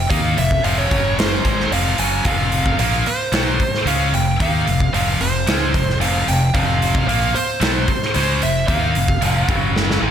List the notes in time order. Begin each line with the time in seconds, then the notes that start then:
0.10 D#2 D#3 A#3 D#4 F5, kick, open hi-hat
0.37 F1 F2 C3 E5, open hi-hat
0.51 kick
0.64 F1 F2 C3 F3 F5, open hi-hat
0.78 C#5
0.90 F#1 F#2 C#3 F#3, kick, open hi-hat
1.19 C5, snare, open hi-hat
1.44 G#1 G#2 D#3 G#3, kick, open hi-hat
1.60 snare
1.71 F1 F2 C3 F3 F5, open hi-hat
1.98 F#1 F#2 C#3 F#3 G#5, open hi-hat
2.25 F1 F2 C3 F3 F5, kick, open hi-hat
2.52 open hi-hat
2.66 kick
2.78 A#1 A#2 F3 A#3 F5, open hi-hat
3.06 C5, muted fingered electric bass stroke, muted distorted electric guitar stroke, open hi-hat
3.32 B1 B2 F#3 B3, snare, open hi-hat
3.60 muted distorted electric guitar stroke, kick, open hi-hat
3.74 snare
3.85 C#2 C#3 G#3 C#4 F5, open hi-hat
4.12 F1 F2 C3 G5, open hi-hat
4.39 D#2 D#3 A#3 D#4 F5, kick, open hi-hat
4.66 F1 F2 C3, open hi-hat
4.80 kick
4.93 F1 F2 C3 F3 F5, open hi-hat
5.20 F1 F2 C3 C5, open hi-hat
5.46 C#2 C#3 G#3 C#4, snare, open hi-hat
5.73 F1 F2 C3, kick, open hi-hat
5.90 snare
6.00 F1 F2 C3 F3 F5, open hi-hat
6.27 F1 F2 C3 G5, open hi-hat
6.54 F1 F2 C3 F3 F5, kick, open hi-hat
6.82 open hi-hat
6.95 kick
7.07 A#1 A#2 F3 A#3 F5, open hi-hat
7.34 C5, muted fingered electric bass stroke, muted distorted electric guitar stroke, open hi-hat
7.60 B1 B2 F#3 B3, snare, open hi-hat
7.88 muted distorted electric guitar stroke, muted fingered electric bass stroke, kick, open hi-hat
8.02 snare
8.14 C#2 C#3 G#3 C#4 C5, open hi-hat
8.42 F1 F2 C3 E5, open hi-hat
8.68 D#2 D#3 A#3 D#4 F5, kick, open hi-hat
8.95 F1 F2 C3, open hi-hat
9.08 kick
9.21 F1 F2 C3 F3, open hi-hat
9.48 F#1 F#2 C#3 F#3, kick, open hi-hat
9.76 snare
9.91 snare
10.01 G#1 G#2 D#3 G#3